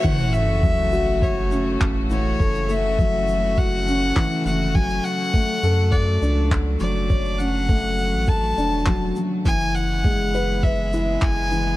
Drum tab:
SH |xxx-x-x-x-x-x-x-|xxx-x-x-x-x-x-x-|xxx-x-x-x-x-x-x-|xxx-x-x-x-x-x-x-|
CP |------------x---|------------x---|------------x---|------------x---|
BD |o---o---o---o---|o---o---o---o---|o---o---o---o---|o---o---o---o---|

SH |xxx-x-x-x-x-x-x-|
CP |------------x---|
BD |o---o---o---o---|